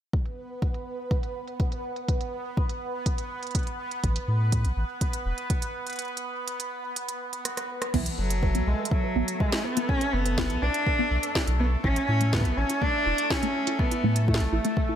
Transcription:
0.13 B3 B4, kick, closed hi-hat
0.26 closed hi-hat
0.62 kick, closed hi-hat
0.74 closed hi-hat
1.11 kick, closed hi-hat
1.23 closed hi-hat
1.48 closed hi-hat
1.60 kick, closed hi-hat
1.72 closed hi-hat
1.96 closed hi-hat
2.08 kick, closed hi-hat
2.21 closed hi-hat
2.57 kick
2.69 closed hi-hat
3.06 kick, closed hi-hat
3.18 closed hi-hat
3.43 closed hi-hat
3.47 closed hi-hat
3.51 closed hi-hat
3.55 kick, closed hi-hat
3.59 closed hi-hat
3.63 closed hi-hat
3.67 closed hi-hat
3.91 closed hi-hat
4.04 A1, kick, closed hi-hat
4.16 closed hi-hat
4.28 A2
4.52 kick, closed hi-hat
4.65 A1, closed hi-hat
4.77 A1
5.01 kick, closed hi-hat
5.13 closed hi-hat
5.26 E1
5.38 closed hi-hat
5.50 kick, closed hi-hat
5.62 closed hi-hat
5.87 closed hi-hat
5.90 closed hi-hat
5.93 closed hi-hat
5.96 closed hi-hat
5.99 closed hi-hat
6.02 closed hi-hat
6.08 closed hi-hat
6.17 closed hi-hat
6.48 closed hi-hat
6.60 closed hi-hat
6.96 closed hi-hat
7.09 closed hi-hat
7.33 closed hi-hat
7.45 cross-stick, closed hi-hat
7.57 cross-stick, closed hi-hat
7.82 cross-stick, closed hi-hat
7.94 B1 E3 A3 B3 A4, kick, crash
8.06 closed hi-hat
8.18 F#1 F#3 B4
8.30 closed hi-hat
8.43 B4, kick
8.55 B1 B3, closed hi-hat
8.67 B1 G#3
8.79 B4
8.85 closed hi-hat
8.91 F#3, kick
9.04 B4
9.16 A1 B3
9.28 closed hi-hat
9.40 G#3 B4, kick
9.52 snare, closed hi-hat
9.65 B3 B4
9.77 B3, closed hi-hat
9.89 C#4, kick
10.01 B4, closed hi-hat
10.13 F#1 B3
10.26 B4, closed hi-hat
10.38 B3, kick, snare
10.50 B1, closed hi-hat
10.62 B1 D4 B4
10.74 closed hi-hat
10.87 B4, kick
10.99 B3
11.11 B1
11.23 B4, closed hi-hat
11.35 kick, snare
11.48 B1 B4, closed hi-hat
11.60 B3
11.84 A1 C#4 E4, kick
11.96 closed hi-hat
12.09 A2 E4
12.21 A3, closed hi-hat
12.33 B3, kick, snare
12.37 kick
12.41 kick
12.45 A1 E4, closed hi-hat
12.57 A1 C#4
12.70 E4, closed hi-hat
12.82 A3 D4, kick
13.06 E1 E4
13.18 closed hi-hat
13.30 C#4 E4, kick, snare
13.43 A3, closed hi-hat
13.67 E4, closed hi-hat
13.79 B3, kick
13.91 E4, closed hi-hat
14.04 A2 A3
14.16 closed hi-hat
14.28 A3 E4, kick
14.34 snare
14.40 A1, closed hi-hat
14.52 A1 E4
14.65 A3, closed hi-hat
14.77 kick
14.89 E4

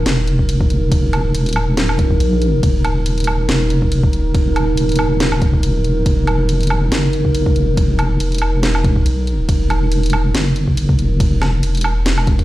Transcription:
Already playing: D#4 A#4
0.06 E1, snare, closed hi-hat, ride
0.27 closed hi-hat
0.39 kick
0.49 closed hi-hat, ride
0.60 kick
0.70 D#1, closed hi-hat
0.92 kick, closed hi-hat, ride
1.13 closed hi-hat, low woodblock
1.34 D#1, closed hi-hat, ride
1.46 closed hi-hat
1.49 closed hi-hat
1.53 closed hi-hat, low woodblock
1.77 snare, closed hi-hat, ride
1.89 low woodblock
1.99 kick, closed hi-hat
2.11 kick
2.20 A#1, closed hi-hat, ride
2.42 closed hi-hat
2.63 D#1, kick, closed hi-hat, ride
2.85 closed hi-hat, low woodblock
3.06 closed hi-hat, ride
3.18 closed hi-hat
3.20 closed hi-hat
3.24 closed hi-hat, low woodblock
3.49 E1, snare, closed hi-hat, ride
3.70 closed hi-hat
3.82 kick
3.92 closed hi-hat, ride
4.03 kick
4.13 D#1, closed hi-hat
4.35 kick, closed hi-hat, ride
4.56 closed hi-hat, low woodblock
4.77 D#1, closed hi-hat, ride
4.89 closed hi-hat
4.92 closed hi-hat
4.96 closed hi-hat, low woodblock
5.20 snare, closed hi-hat, ride
5.32 low woodblock
5.42 kick, closed hi-hat
5.53 kick
5.63 D#1, closed hi-hat, ride
5.84 closed hi-hat
6.06 E1, kick, closed hi-hat, ride
6.27 closed hi-hat, low woodblock
6.49 closed hi-hat, ride
6.61 closed hi-hat
6.63 closed hi-hat
6.67 closed hi-hat, low woodblock
6.92 F#1, snare, closed hi-hat, ride
7.13 closed hi-hat
7.25 kick
7.35 closed hi-hat, ride
7.46 kick
7.56 E1, closed hi-hat
7.77 kick, closed hi-hat, ride
7.99 closed hi-hat, low woodblock
8.20 E1, closed hi-hat, ride
8.32 closed hi-hat
8.35 closed hi-hat
8.38 closed hi-hat, low woodblock
8.63 snare, closed hi-hat, ride
8.75 low woodblock
8.84 kick, closed hi-hat
8.96 kick
9.06 B1, closed hi-hat, ride
9.27 closed hi-hat
9.49 E1, kick, closed hi-hat, ride
9.70 closed hi-hat, low woodblock
9.92 closed hi-hat, ride
10.03 closed hi-hat
10.06 closed hi-hat
10.10 closed hi-hat, low woodblock
10.34 F#1, snare, closed hi-hat, ride
10.56 closed hi-hat
10.68 kick
10.77 closed hi-hat, ride
10.89 kick
10.99 E1, closed hi-hat
11.20 kick, closed hi-hat, ride
11.42 snare, closed hi-hat, low woodblock
11.63 E1, closed hi-hat, ride
11.75 closed hi-hat
11.77 closed hi-hat
11.81 closed hi-hat, low woodblock
12.06 snare, closed hi-hat, ride
12.18 low woodblock
12.27 kick, closed hi-hat
12.39 kick, closed hi-hat

